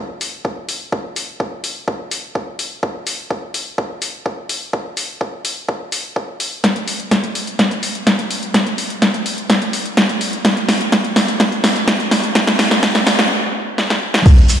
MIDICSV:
0, 0, Header, 1, 3, 480
1, 0, Start_track
1, 0, Tempo, 476190
1, 932, Time_signature, 4, 2, 24, 8
1, 14717, End_track
2, 0, Start_track
2, 0, Title_t, "Shekere"
2, 14373, Note_on_c, 9, 82, 39
2, 14474, Note_off_c, 9, 82, 0
2, 14604, Note_on_c, 9, 82, 86
2, 14705, Note_off_c, 9, 82, 0
2, 14717, End_track
3, 0, Start_track
3, 0, Title_t, "Drums"
3, 211, Note_on_c, 9, 46, 107
3, 312, Note_off_c, 9, 46, 0
3, 451, Note_on_c, 9, 36, 107
3, 552, Note_off_c, 9, 36, 0
3, 691, Note_on_c, 9, 46, 105
3, 792, Note_off_c, 9, 46, 0
3, 931, Note_on_c, 9, 36, 127
3, 1032, Note_off_c, 9, 36, 0
3, 1172, Note_on_c, 9, 46, 107
3, 1273, Note_off_c, 9, 46, 0
3, 1412, Note_on_c, 9, 36, 111
3, 1512, Note_off_c, 9, 36, 0
3, 1651, Note_on_c, 9, 46, 106
3, 1752, Note_off_c, 9, 46, 0
3, 1892, Note_on_c, 9, 36, 123
3, 1993, Note_off_c, 9, 36, 0
3, 2131, Note_on_c, 9, 46, 114
3, 2232, Note_off_c, 9, 46, 0
3, 2372, Note_on_c, 9, 36, 104
3, 2473, Note_off_c, 9, 36, 0
3, 2611, Note_on_c, 9, 46, 107
3, 2712, Note_off_c, 9, 46, 0
3, 2852, Note_on_c, 9, 36, 127
3, 2953, Note_off_c, 9, 36, 0
3, 3091, Note_on_c, 9, 46, 109
3, 3192, Note_off_c, 9, 46, 0
3, 3331, Note_on_c, 9, 36, 112
3, 3432, Note_off_c, 9, 36, 0
3, 3571, Note_on_c, 9, 46, 111
3, 3671, Note_off_c, 9, 46, 0
3, 3812, Note_on_c, 9, 36, 127
3, 3912, Note_off_c, 9, 36, 0
3, 4050, Note_on_c, 9, 46, 115
3, 4151, Note_off_c, 9, 46, 0
3, 4291, Note_on_c, 9, 36, 108
3, 4392, Note_off_c, 9, 36, 0
3, 4530, Note_on_c, 9, 46, 107
3, 4631, Note_off_c, 9, 46, 0
3, 4771, Note_on_c, 9, 36, 127
3, 4872, Note_off_c, 9, 36, 0
3, 5010, Note_on_c, 9, 46, 107
3, 5111, Note_off_c, 9, 46, 0
3, 5251, Note_on_c, 9, 36, 106
3, 5352, Note_off_c, 9, 36, 0
3, 5491, Note_on_c, 9, 46, 114
3, 5591, Note_off_c, 9, 46, 0
3, 5731, Note_on_c, 9, 36, 122
3, 5831, Note_off_c, 9, 36, 0
3, 5970, Note_on_c, 9, 46, 115
3, 6071, Note_off_c, 9, 46, 0
3, 6211, Note_on_c, 9, 36, 112
3, 6312, Note_off_c, 9, 36, 0
3, 6451, Note_on_c, 9, 46, 110
3, 6552, Note_off_c, 9, 46, 0
3, 6691, Note_on_c, 9, 36, 125
3, 6692, Note_on_c, 9, 38, 50
3, 6692, Note_on_c, 9, 42, 90
3, 6792, Note_off_c, 9, 36, 0
3, 6792, Note_off_c, 9, 38, 0
3, 6792, Note_off_c, 9, 42, 0
3, 6814, Note_on_c, 9, 42, 39
3, 6915, Note_off_c, 9, 42, 0
3, 6931, Note_on_c, 9, 46, 102
3, 7032, Note_off_c, 9, 46, 0
3, 7053, Note_on_c, 9, 42, 37
3, 7154, Note_off_c, 9, 42, 0
3, 7171, Note_on_c, 9, 36, 105
3, 7171, Note_on_c, 9, 38, 49
3, 7171, Note_on_c, 9, 42, 87
3, 7272, Note_off_c, 9, 36, 0
3, 7272, Note_off_c, 9, 38, 0
3, 7272, Note_off_c, 9, 42, 0
3, 7294, Note_on_c, 9, 42, 38
3, 7394, Note_off_c, 9, 42, 0
3, 7411, Note_on_c, 9, 46, 108
3, 7512, Note_off_c, 9, 46, 0
3, 7533, Note_on_c, 9, 42, 40
3, 7634, Note_off_c, 9, 42, 0
3, 7651, Note_on_c, 9, 36, 120
3, 7652, Note_on_c, 9, 38, 54
3, 7652, Note_on_c, 9, 42, 86
3, 7752, Note_off_c, 9, 36, 0
3, 7753, Note_off_c, 9, 38, 0
3, 7753, Note_off_c, 9, 42, 0
3, 7774, Note_on_c, 9, 42, 39
3, 7875, Note_off_c, 9, 42, 0
3, 7891, Note_on_c, 9, 46, 107
3, 7992, Note_off_c, 9, 46, 0
3, 8015, Note_on_c, 9, 42, 37
3, 8116, Note_off_c, 9, 42, 0
3, 8131, Note_on_c, 9, 36, 104
3, 8132, Note_on_c, 9, 38, 59
3, 8132, Note_on_c, 9, 42, 91
3, 8232, Note_off_c, 9, 36, 0
3, 8233, Note_off_c, 9, 38, 0
3, 8233, Note_off_c, 9, 42, 0
3, 8255, Note_on_c, 9, 42, 38
3, 8356, Note_off_c, 9, 42, 0
3, 8372, Note_on_c, 9, 46, 110
3, 8473, Note_off_c, 9, 46, 0
3, 8494, Note_on_c, 9, 42, 39
3, 8595, Note_off_c, 9, 42, 0
3, 8611, Note_on_c, 9, 36, 123
3, 8611, Note_on_c, 9, 38, 61
3, 8611, Note_on_c, 9, 42, 95
3, 8712, Note_off_c, 9, 36, 0
3, 8712, Note_off_c, 9, 38, 0
3, 8712, Note_off_c, 9, 42, 0
3, 8735, Note_on_c, 9, 42, 41
3, 8836, Note_off_c, 9, 42, 0
3, 8852, Note_on_c, 9, 46, 103
3, 8953, Note_off_c, 9, 46, 0
3, 8974, Note_on_c, 9, 42, 39
3, 9075, Note_off_c, 9, 42, 0
3, 9091, Note_on_c, 9, 36, 105
3, 9092, Note_on_c, 9, 38, 61
3, 9092, Note_on_c, 9, 42, 87
3, 9192, Note_off_c, 9, 36, 0
3, 9193, Note_off_c, 9, 38, 0
3, 9193, Note_off_c, 9, 42, 0
3, 9215, Note_on_c, 9, 42, 39
3, 9316, Note_off_c, 9, 42, 0
3, 9332, Note_on_c, 9, 46, 102
3, 9433, Note_off_c, 9, 46, 0
3, 9455, Note_on_c, 9, 42, 40
3, 9556, Note_off_c, 9, 42, 0
3, 9571, Note_on_c, 9, 36, 114
3, 9572, Note_on_c, 9, 38, 64
3, 9572, Note_on_c, 9, 42, 89
3, 9672, Note_off_c, 9, 36, 0
3, 9673, Note_off_c, 9, 38, 0
3, 9673, Note_off_c, 9, 42, 0
3, 9694, Note_on_c, 9, 42, 40
3, 9795, Note_off_c, 9, 42, 0
3, 9811, Note_on_c, 9, 46, 105
3, 9912, Note_off_c, 9, 46, 0
3, 9935, Note_on_c, 9, 42, 38
3, 10035, Note_off_c, 9, 42, 0
3, 10051, Note_on_c, 9, 36, 100
3, 10052, Note_on_c, 9, 38, 71
3, 10052, Note_on_c, 9, 42, 93
3, 10152, Note_off_c, 9, 36, 0
3, 10153, Note_off_c, 9, 38, 0
3, 10153, Note_off_c, 9, 42, 0
3, 10174, Note_on_c, 9, 42, 40
3, 10275, Note_off_c, 9, 42, 0
3, 10291, Note_on_c, 9, 46, 104
3, 10392, Note_off_c, 9, 46, 0
3, 10413, Note_on_c, 9, 42, 41
3, 10514, Note_off_c, 9, 42, 0
3, 10531, Note_on_c, 9, 36, 120
3, 10531, Note_on_c, 9, 38, 77
3, 10531, Note_on_c, 9, 42, 102
3, 10631, Note_off_c, 9, 38, 0
3, 10631, Note_off_c, 9, 42, 0
3, 10632, Note_off_c, 9, 36, 0
3, 10654, Note_on_c, 9, 42, 43
3, 10755, Note_off_c, 9, 42, 0
3, 10771, Note_on_c, 9, 38, 77
3, 10771, Note_on_c, 9, 46, 99
3, 10872, Note_off_c, 9, 38, 0
3, 10872, Note_off_c, 9, 46, 0
3, 10894, Note_on_c, 9, 42, 41
3, 10995, Note_off_c, 9, 42, 0
3, 11010, Note_on_c, 9, 38, 79
3, 11010, Note_on_c, 9, 42, 92
3, 11011, Note_on_c, 9, 36, 105
3, 11111, Note_off_c, 9, 38, 0
3, 11111, Note_off_c, 9, 42, 0
3, 11112, Note_off_c, 9, 36, 0
3, 11133, Note_on_c, 9, 42, 41
3, 11234, Note_off_c, 9, 42, 0
3, 11250, Note_on_c, 9, 38, 80
3, 11250, Note_on_c, 9, 46, 104
3, 11351, Note_off_c, 9, 38, 0
3, 11351, Note_off_c, 9, 46, 0
3, 11374, Note_on_c, 9, 42, 41
3, 11475, Note_off_c, 9, 42, 0
3, 11490, Note_on_c, 9, 38, 83
3, 11490, Note_on_c, 9, 42, 92
3, 11491, Note_on_c, 9, 36, 112
3, 11591, Note_off_c, 9, 38, 0
3, 11591, Note_off_c, 9, 42, 0
3, 11592, Note_off_c, 9, 36, 0
3, 11614, Note_on_c, 9, 42, 42
3, 11714, Note_off_c, 9, 42, 0
3, 11731, Note_on_c, 9, 38, 91
3, 11731, Note_on_c, 9, 46, 108
3, 11832, Note_off_c, 9, 38, 0
3, 11832, Note_off_c, 9, 46, 0
3, 11853, Note_on_c, 9, 42, 39
3, 11954, Note_off_c, 9, 42, 0
3, 11971, Note_on_c, 9, 36, 97
3, 11971, Note_on_c, 9, 38, 93
3, 11971, Note_on_c, 9, 42, 98
3, 12072, Note_off_c, 9, 36, 0
3, 12072, Note_off_c, 9, 38, 0
3, 12072, Note_off_c, 9, 42, 0
3, 12094, Note_on_c, 9, 42, 43
3, 12195, Note_off_c, 9, 42, 0
3, 12211, Note_on_c, 9, 38, 87
3, 12211, Note_on_c, 9, 46, 103
3, 12312, Note_off_c, 9, 38, 0
3, 12312, Note_off_c, 9, 46, 0
3, 12334, Note_on_c, 9, 42, 42
3, 12435, Note_off_c, 9, 42, 0
3, 12451, Note_on_c, 9, 36, 122
3, 12451, Note_on_c, 9, 38, 94
3, 12451, Note_on_c, 9, 42, 103
3, 12552, Note_off_c, 9, 36, 0
3, 12552, Note_off_c, 9, 38, 0
3, 12552, Note_off_c, 9, 42, 0
3, 12574, Note_on_c, 9, 38, 87
3, 12574, Note_on_c, 9, 42, 45
3, 12675, Note_off_c, 9, 38, 0
3, 12675, Note_off_c, 9, 42, 0
3, 12691, Note_on_c, 9, 38, 94
3, 12691, Note_on_c, 9, 46, 107
3, 12792, Note_off_c, 9, 38, 0
3, 12792, Note_off_c, 9, 46, 0
3, 12814, Note_on_c, 9, 38, 83
3, 12814, Note_on_c, 9, 42, 44
3, 12915, Note_off_c, 9, 38, 0
3, 12915, Note_off_c, 9, 42, 0
3, 12931, Note_on_c, 9, 36, 108
3, 12931, Note_on_c, 9, 38, 98
3, 12931, Note_on_c, 9, 42, 97
3, 13032, Note_off_c, 9, 36, 0
3, 13032, Note_off_c, 9, 38, 0
3, 13032, Note_off_c, 9, 42, 0
3, 13054, Note_on_c, 9, 38, 86
3, 13054, Note_on_c, 9, 42, 43
3, 13154, Note_off_c, 9, 38, 0
3, 13154, Note_off_c, 9, 42, 0
3, 13171, Note_on_c, 9, 38, 103
3, 13171, Note_on_c, 9, 46, 106
3, 13271, Note_off_c, 9, 38, 0
3, 13271, Note_off_c, 9, 46, 0
3, 13294, Note_on_c, 9, 38, 91
3, 13294, Note_on_c, 9, 42, 44
3, 13394, Note_off_c, 9, 38, 0
3, 13394, Note_off_c, 9, 42, 0
3, 13892, Note_on_c, 9, 38, 62
3, 13992, Note_off_c, 9, 38, 0
3, 14014, Note_on_c, 9, 38, 63
3, 14115, Note_off_c, 9, 38, 0
3, 14254, Note_on_c, 9, 38, 88
3, 14355, Note_off_c, 9, 38, 0
3, 14372, Note_on_c, 9, 42, 72
3, 14372, Note_on_c, 9, 49, 108
3, 14373, Note_on_c, 9, 36, 127
3, 14472, Note_off_c, 9, 42, 0
3, 14472, Note_off_c, 9, 49, 0
3, 14473, Note_off_c, 9, 36, 0
3, 14494, Note_on_c, 9, 42, 43
3, 14595, Note_off_c, 9, 42, 0
3, 14611, Note_on_c, 9, 46, 107
3, 14712, Note_off_c, 9, 46, 0
3, 14717, End_track
0, 0, End_of_file